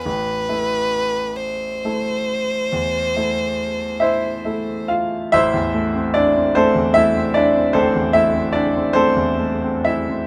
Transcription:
<<
  \new Staff \with { instrumentName = "Violin" } { \time 12/8 \key a \minor \tempo 4. = 46 b'4. c''1 r8 | r1. | }
  \new Staff \with { instrumentName = "Grand piano" } { \time 12/8 \key a \minor << { r1 r8 <e' c'' e''>4 <f' f''>8 | <e' c'' e''>4 <d' d''>8 <c' a' c''>8 <e' e''>8 <d' d''>8 <c' a' c''>8 <e' e''>8 <d' d''>8 <c' a' c''>4 <e' e''>8 | } \\ { a,,8 <a e' a'>4. <a e' a'>4 e,8 <a e' a'>4. <a e' a'>4 | a,,16 e,16 a16 c'16 e'16 c'16 a16 e,16 a16 c'16 e'16 c'16 a,,16 e,16 a16 c'16 e'16 c'16 a16 e,16 a16 c'8 c'16 | } >> }
>>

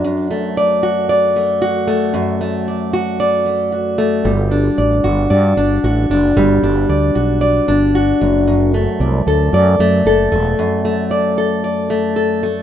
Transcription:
<<
  \new Staff \with { instrumentName = "Steel-string acoustic guitar" } { \time 4/4 \key d \mixolydian \tempo 4 = 114 fis,8 a8 d''8 fis'8 d''8 a8 fis'8 a8 | fis,8 a8 d''8 fis'8 d''8 a8 fis'8 a8 | g8 d'8 d''8 fis'8 d''8 d'8 fis'8 d'8 | g8 d'8 d''8 fis'8 d''8 d'8 fis'8 fis,8 |
fis,8 a8 d''8 a'8 d''8 a8 a'8 a8 | fis,8 a8 d''8 a'8 d''8 a8 a'8 a8 | }
  \new Staff \with { instrumentName = "Fretless electric bass" } { \clef bass \time 4/4 \key d \mixolydian r1 | r1 | g,,4 a,,8 g,,8 g,8 g,,8 a,,8 fis,,8 | g,,8 g,,8 d,8 b,,4 g,,4 fis,,8~ |
fis,,4 c,8 d,8 fis,8 fis,8 fis,,8 e,,8 | r1 | }
>>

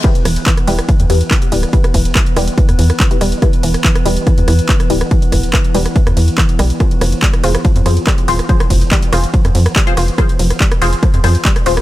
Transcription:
<<
  \new Staff \with { instrumentName = "Synth stab" } { \time 4/4 \key e \phrygian \tempo 4 = 142 <e' g' b'>16 r4 r16 <e' g' b'>16 r8. <e' g' b'>16 r8. <e' g' b'>16 r16 | <e' g' b'>16 r4 r16 <e' g' b'>16 r4. <e' g' b'>16 r8 | <e' g' b'>16 r4 r16 <e' g' b'>16 r8. <e' g' b'>16 r8. <e' g' b'>16 r16 | <e' g' b'>16 r4 r16 <e' g' b'>16 r2 r16 |
<f' aes' c''>16 r4 r16 <f' aes' c''>16 r8. <f' aes' c''>16 r8. <f' aes' c''>16 r16 | <f' aes' c''>16 r4 r16 <f' aes' c''>16 r4. <f' aes' c''>16 r8 | <f' aes' c''>16 r4 r16 <f' aes' c''>16 r8. <f' aes' c''>16 r8. <f' aes' c''>16 r16 | }
  \new Staff \with { instrumentName = "Synth drone" } { \clef bass \time 4/4 \key e \phrygian <e b>1~ | <e b>1~ | <e b>1~ | <e b>1~ |
<e b>1~ | <e b>1~ | <e b>1 | }
  \new Staff \with { instrumentName = "Synth arpeggio sound" } { \clef bass \time 4/4 \key e \phrygian e8 e8 e8 g8 e8 e8 e8 g8 | e8 e8 e8 g8 e8 e8 e8 g8 | e8 e8 e8 g8 e8 e8 e8 g8 | e8 e8 e8 g8 e8 e8 e8 g8 |
f8 f8 g8 f'8 f8 f8 g8 f'8 | f8 f8 g8 f'8 f8 f8 g8 f'8 | f8 f8 g8 f'8 f8 f8 g8 f'8 | }
  \new Staff \with { instrumentName = "Analog synth bass" } { \clef bass \time 4/4 \key e \phrygian r8 e,,16 r8. e,,16 r8 e,16 e,16 r8. d,,16 r16 | r8 e,,16 r8. e,,16 r8 e,16 e,16 r8. e,,16 r16 | r8 e,,16 r8. e,,16 r8 e,16 e,16 r8. d,,16 r16 | r8 e,,16 r8. e,,16 r8 e,16 e,16 r8. b,,16 r16 |
r8 f,,16 r8. f,,16 r8 f,16 f,16 r8. dis,,16 r16 | r8 f,,16 r8. f,,16 r8 f,16 f,16 r8. f,,16 r16 | r8 f,,16 r8. f,,16 r8 f,16 f,16 r8. dis,,16 r16 | }
  \new DrumStaff \with { instrumentName = "Drums" } \drummode { \time 4/4 <hh bd cymr ss>16 hh16 <hho cymr ss>16 hh16 <hc hh bd cymr>16 <hh ss>16 <hho cymr>16 <hh ss>16 <hh bd cymr>16 hh16 <hho cymr ss>16 hh16 <hc hh bd cymr ss>16 hh16 <hho cymr>16 <hh ss>16 | <hh bd cymr>16 <hh ss>16 <hho bd cymr>16 hh16 <hc hh bd cymr ss>16 hh16 <hho cymr ss>16 hh16 <hh bd cymr>16 <hh ss>16 <hho cymr>16 <hh ss>16 <hc hh bd cymr>16 hh16 <hho cymr ss>16 hh16 | <hh bd cymr ss>16 hh16 <hho cymr>16 <hh ss>16 <hc hh bd cymr>16 <hh ss>16 <hho cymr>16 hh16 <hh bd cymr ss>16 hh16 <hho cymr ss>16 hh16 <hc hh bd cymr>16 <hh ss>16 <hho cymr>16 <hh ss>16 | <hh bd cymr>16 hh16 <hho bd cymr ss>16 hh16 <hc hh bd cymr ss>16 hh16 <hho cymr>16 <hh ss>16 <hh bd cymr>16 <hh ss>16 <hho cymr>16 hh16 <hc hh bd cymr ss>16 hh16 <hho cymr ss>16 hh16 |
<hh bd cymr ss>16 hh16 <hho cymr ss>16 hh16 <hc hh bd cymr>16 <hh ss>16 <hho cymr>16 <hh ss>16 <hh bd cymr>16 hh16 <hho cymr ss>16 hh16 <hc hh bd cymr ss>16 hh16 <hho cymr>16 <hh ss>16 | <hh bd cymr>16 <hh ss>16 <hho bd cymr>16 hh16 <hc hh bd cymr ss>16 hh16 <hho cymr ss>16 hh16 <hh bd cymr>16 <hh ss>16 <hho cymr>16 <hh ss>16 <hc hh bd cymr>16 hh16 <hho cymr ss>16 hh16 | <hh bd cymr ss>16 hh16 <hho cymr>16 <hh ss>16 <hc hh bd cymr>16 <hh ss>16 <hho cymr>16 hh16 <hh bd cymr ss>16 hh16 <hho cymr ss>16 hh16 <hc hh bd cymr>16 <hh ss>16 <hho cymr>16 <hh ss>16 | }
>>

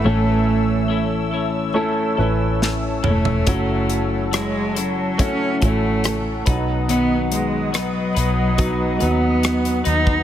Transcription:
<<
  \new Staff \with { instrumentName = "Analog synth pad" } { \time 4/4 \key b \mixolydian \tempo 4 = 70 << { <cis'' a'' e'''>1~ | <cis'' a'' e'''>2.~ <cis'' a'' e'''>8 <b' dis'''>8~ | <b' dis'''>1 | } \\ { e''1 | fis''2.~ fis''8 dis''8~ | dis''1 | } >> }
  \new Staff \with { instrumentName = "Clean electric guitar" } { \time 4/4 \key b \mixolydian <a, e a cis' e' a'>4 <a cis' e' a'>8 <a cis' e' a'>8 <a cis' e' a'>8 <a cis' e' a'>4 <a cis' e' a'>8 | <fis cis' e' a'>4 <fis cis' e'>8 <cis' e' a'>8 <fis cis' e' a'>8 <cis' e' a'>4 <fis b dis' b'>8 | <b, dis fis b dis' b'>4 <fis b dis' b'>8 <fis b dis' b'>8 <fis b dis' b'>8 <fis b dis' b'>4 <fis b dis' b'>8 | }
  \new Staff \with { instrumentName = "Grand piano" } { \time 4/4 \key b \mixolydian <a cis' e' a'>2 <a cis' e' a'>8 <a cis' e' b'>4. | <fis cis' e' fis'>2 <a cis' e' fis'>8 <a cis' e' fis'>4 <fis b dis' fis'>8~ | <fis b dis' fis'>4. r8 <fis b dis' fis'>8 <fis b dis' fis'>4. | }
  \new Staff \with { instrumentName = "Grand piano" } { \clef bass \time 4/4 \key b \mixolydian <a, e>4. r2 r8 | cis4. r2 b,8~ | b,4 r2. | }
  \new Staff \with { instrumentName = "Cello" } { \time 4/4 \key b \mixolydian a4. r2 a8~ | a4 gis8 fis8 cis'8 a4 r8 | b8 gis8 fis4. b4 dis'8 | }
  \new Staff \with { instrumentName = "Fingered electric bass" } { \clef bass \time 4/4 \key b \mixolydian a,,2~ a,,8 a,,4 e,,8 | fis,,2~ fis,,8 a,,4 b,,8~ | b,,4. b,,4 dis,4 dis,8 | }
  \new DrumStaff \with { instrumentName = "Drums" } \drummode { \time 4/4 r4 r4 r4 sn8 toml16 tomfh16 | <hh bd>8 hh8 <hh ss>8 hh8 <hh bd>8 <hh bd>8 <hh ss>8 <hh bd>8 | hh8 hh8 <hh ss>8 hh8 <hh bd>8 hh8 <hh ss>16 hh16 hh16 bd16 | }
>>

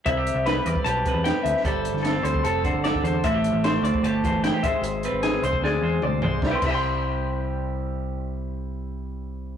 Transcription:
<<
  \new Staff \with { instrumentName = "Clean electric guitar" } { \time 4/4 \key c \major \tempo 4 = 150 e''4 b'8 d''8 a''4 g''8 e''8 | c''4 a'8 c''8 a'4 d''8 c''8 | e''4 c''8 d''8 a''4 g''8 e''8 | r4 gis'8 c''8 gis'4 d''8 c''8 |
<e'' g'' c'''>8 <e'' g'' c'''>2.~ <e'' g'' c'''>8~ | <e'' g'' c'''>1 | }
  \new Staff \with { instrumentName = "Clean electric guitar" } { \time 4/4 \key c \major << { e'16 g'8. b'4 g'8 b'8 g'4 | a'4 a'4 a'8 c''8 a'4 | e'16 g'8. c''4 g'8 c''8 e'16 g'16 c''8~ | c''8 b'4 c''8 d''8 c''4 c''8 |
<g e' g' b'>16 r16 <g e' g'>2.~ <g e' g'>8~ | <g e' g'>1 | } \\ { c4 g4. c4. | g4 c'4. d4. | a,4 a4. e4 gis8~ | gis8 c'4. gis4. gis8 |
c8 c2.~ c8~ | c1 | } >> }
  \new Staff \with { instrumentName = "Picked electric bass" } { \clef bass \time 4/4 \key c \major c,8. c,8. e,16 r16 b,,8. e,8 r16 d,16 r16 | g,,8. g,,8. d,8 f,,8. g,,8. e,8 | a,,8. a,,8. d,16 r16 g,,8. g,,8 r16 gis,,16 r16 | gis,,8. gis,,8. c,8 d,8 e,8 d,8 c,8 |
c,16 r16 c,2.~ c,8~ | c,1 | }
  \new DrumStaff \with { instrumentName = "Drums" } \drummode { \time 4/4 <hh bd>8 hh8 <hh sn>8 hh16 bd16 hh8 <hh bd>8 <hh sn>8 hh16 sn16 | <hh bd>8 hh16 sn16 <hh sn>8 hh16 bd16 hh8 <hh bd>8 <hh sn>16 bd16 hh8 | <hh bd>8 hh8 <hh sn>8 hh16 bd16 hh8 <hh bd>8 <hh sn>8 <hh bd>8 | hh8 hh8 <hh sn>8 hh16 bd16 sn4 toml8 tomfh8 |
<bd sn>8 <cymc bd>8 r4 r4 r4 | r4 r4 r4 r4 | }
>>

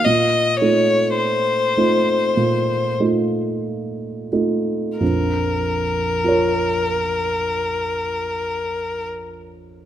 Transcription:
<<
  \new Staff \with { instrumentName = "Violin" } { \time 4/4 \key bes \minor \tempo 4 = 49 ees''8 des''8 c''4. r4. | bes'1 | }
  \new Staff \with { instrumentName = "Grand piano" } { \time 4/4 \key bes \minor << { r1 | r4 <f' bes' des''>2. | } \\ { bes,8 <a ees' f'>4 <a ees' f'>8 bes,8 <a ees' f'>4 <a ees' f'>8 | <bes,, f,>1 | } >> }
>>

